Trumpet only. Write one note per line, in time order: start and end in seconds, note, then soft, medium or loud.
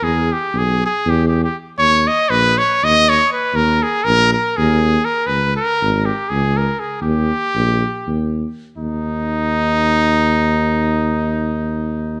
0.03 0.34 G#4 loud
0.32 0.59 G4 medium
0.58 0.85 G#4 loud
0.86 1.11 G#4 medium
1.10 1.27 G4 medium
1.28 1.43 G4 medium
1.44 1.57 G4 medium
1.78 2.09 C#5 loud
2.07 2.31 D#5 loud
2.30 2.59 B4 loud
2.58 2.86 C#5 loud
2.84 3.11 D#5 loud
3.09 3.32 C#5 loud
3.32 3.57 B4 loud
3.56 3.84 A#4 loud
3.83 4.05 G#4 medium
4.04 4.33 A#4 loud
4.34 4.58 A#4 medium
4.57 5.06 G#4 loud
5.05 5.28 A#4 medium
5.27 5.56 B4 loud
5.56 6.07 A#4 loud
6.05 6.30 G4 medium
6.29 6.59 G#4 medium
6.57 6.81 A#4 medium
6.80 7.01 G#4 medium
7.02 8.29 G4 loud
8.78 12.20 D#4 loud